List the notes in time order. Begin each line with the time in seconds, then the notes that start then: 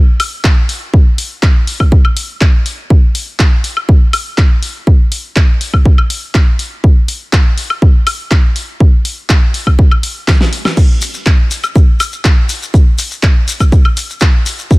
0.20 open hi-hat, high woodblock
0.44 kick, clap
0.69 open hi-hat
0.94 kick
1.18 open hi-hat
1.43 kick, clap
1.67 open hi-hat
1.80 kick, high woodblock
1.92 kick
2.05 high woodblock
2.17 open hi-hat
2.41 kick, clap
2.66 open hi-hat
2.90 kick
3.15 open hi-hat
3.39 kick, clap
3.64 open hi-hat
3.77 high woodblock
3.89 kick
4.13 open hi-hat, high woodblock
4.38 kick, clap
4.63 open hi-hat
4.87 kick
5.12 open hi-hat
5.36 kick, clap
5.61 open hi-hat
5.74 kick, high woodblock
5.85 kick
5.98 high woodblock
6.10 open hi-hat
6.35 kick, clap
6.59 open hi-hat
6.84 kick
7.08 open hi-hat
7.33 kick, clap
7.58 open hi-hat
7.70 high woodblock
7.82 kick
8.07 open hi-hat, high woodblock
8.31 kick, clap
8.56 open hi-hat
8.80 kick
9.05 open hi-hat
9.30 kick, clap
9.54 open hi-hat
9.67 kick, high woodblock
9.79 kick
9.91 high woodblock
10.03 open hi-hat
10.28 kick, snare, clap
10.41 snare
10.53 open hi-hat
10.65 snare, high woodblock
10.77 kick, crash, shekere
11.02 open hi-hat, shekere
11.14 shekere
11.26 kick, clap, shekere
11.51 open hi-hat, shekere
11.63 high woodblock, shekere
11.76 kick, shekere
12.00 open hi-hat, high woodblock, shekere
12.13 shekere
12.25 kick, clap, shekere
12.49 open hi-hat, shekere
12.63 shekere
12.74 kick, shekere
12.99 open hi-hat, shekere
13.11 shekere
13.23 kick, clap, shekere
13.48 open hi-hat, shekere
13.60 kick, high woodblock, shekere
13.72 kick, shekere
13.85 high woodblock
13.97 open hi-hat, shekere
14.10 shekere
14.20 kick, clap, shekere
14.46 open hi-hat, shekere
14.59 shekere
14.71 kick, shekere